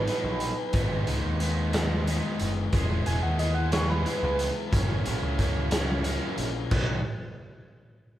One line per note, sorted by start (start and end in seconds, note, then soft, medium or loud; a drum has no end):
0.07 0.72 B2 medium
0.07 0.52 F#3 medium
0.07 0.52 B3 medium
0.07 0.52 D#4 medium
0.07 1.37 B4 medium
0.07 0.52 B4 medium
0.07 closed hi-hat medium
0.24 0.52 A#1 medium
0.40 closed hi-hat medium
0.73 1.01 G#1 medium
0.73 1.40 G#2 medium
0.73 1.38 D#3 medium
0.73 1.08 G#3 medium
0.73 1.08 B3 medium
0.73 1.07 D#4 medium
0.73 1.07 B4 medium
0.73 kick loud
0.73 closed hi-hat medium
1.07 1.21 C#2 medium
1.07 1.40 G#3 medium
1.07 1.40 B3 medium
1.07 1.40 D#4 medium
1.07 1.41 B4 medium
1.07 closed hi-hat medium
1.24 2.19 D#2 medium
1.39 1.74 D#3 medium
1.39 1.74 G#3 medium
1.39 1.74 B3 medium
1.39 1.73 D#4 medium
1.39 1.73 B4 medium
1.39 closed hi-hat medium
1.73 2.41 G#2 medium
1.73 2.06 D#3 medium
1.73 2.06 G#3 medium
1.73 2.07 B3 medium
1.73 2.07 D#4 medium
1.73 2.07 B4 medium
1.73 snare loud
1.73 closed hi-hat medium
2.07 2.71 D#3 medium
2.07 2.50 G#3 medium
2.07 2.51 B3 medium
2.07 2.51 D#4 medium
2.07 2.51 B4 medium
2.07 closed hi-hat medium
2.39 2.68 F#1 medium
2.39 closed hi-hat medium
2.73 3.00 E1 medium
2.73 3.39 E3 medium
2.73 3.06 G#3 medium
2.73 3.06 B3 medium
2.73 3.05 E4 medium
2.73 3.05 G#4 medium
2.73 kick loud
2.73 closed hi-hat medium
3.06 3.20 E1 medium
3.06 3.38 G#3 medium
3.06 3.39 B3 medium
3.06 3.39 E4 medium
3.06 3.39 G#4 medium
3.06 3.22 G#5 loud
3.06 closed hi-hat medium
3.23 4.04 D#2 medium
3.23 3.38 F#5 medium
3.39 3.73 E3 medium
3.39 3.73 G#3 medium
3.39 3.73 B3 medium
3.39 3.72 E4 medium
3.39 3.72 G#4 medium
3.39 3.54 D#5 medium
3.39 closed hi-hat medium
3.55 3.71 F#5 medium
3.72 4.04 E3 medium
3.72 4.05 G#3 medium
3.72 4.05 B3 medium
3.72 4.06 E4 medium
3.72 4.06 G#4 medium
3.72 3.88 C#5 medium
3.72 snare loud
3.72 closed hi-hat medium
3.90 4.05 B4 medium
4.05 4.70 E3 medium
4.05 4.49 G#3 medium
4.05 4.49 B3 medium
4.05 4.49 E4 medium
4.05 4.50 G#4 medium
4.05 4.70 B4 loud
4.05 closed hi-hat medium
4.23 4.50 C#2 loud
4.39 closed hi-hat medium
4.71 5.00 F#1 loud
4.71 5.38 F#2 medium
4.71 5.36 C#3 medium
4.71 5.06 E3 medium
4.71 5.06 F#3 medium
4.71 5.06 A#3 loud
4.71 5.05 C#4 medium
4.71 5.05 E4 medium
4.71 5.05 A#4 medium
4.71 kick loud
4.71 closed hi-hat loud
5.05 5.20 A#1 medium
5.05 5.38 E3 medium
5.05 5.38 F#3 medium
5.05 5.38 A#3 medium
5.05 5.39 C#4 medium
5.05 5.39 E4 medium
5.05 5.39 A#4 medium
5.05 closed hi-hat medium
5.23 6.17 C#2 medium
5.38 5.71 C#3 medium
5.38 5.71 E3 medium
5.38 5.72 F#3 medium
5.38 5.71 A#3 medium
5.38 5.72 C#4 medium
5.38 5.72 E4 medium
5.38 5.71 A#4 medium
5.38 kick medium
5.38 closed hi-hat medium
5.71 6.39 F#2 medium
5.71 6.03 C#3 medium
5.71 6.04 E3 medium
5.71 6.05 F#3 medium
5.71 6.06 A#3 medium
5.71 6.05 C#4 medium
5.71 6.05 E4 medium
5.71 6.05 A#4 medium
5.71 snare loud
5.71 closed hi-hat loud
6.04 6.69 C#3 medium
6.04 6.69 E3 medium
6.04 6.49 F#3 medium
6.04 6.70 A#3 medium
6.04 6.49 C#4 medium
6.04 6.49 E4 medium
6.04 6.49 A#4 medium
6.04 closed hi-hat medium
6.38 6.65 A#1 medium
6.38 closed hi-hat medium
6.71 7.02 B1 medium
6.71 6.98 B2 medium
6.71 6.98 D#3 medium
6.71 6.98 F#3 medium
6.71 6.98 B3 loud
6.71 6.99 D#4 loud
6.71 6.99 B4 medium
6.71 kick loud
6.71 crash loud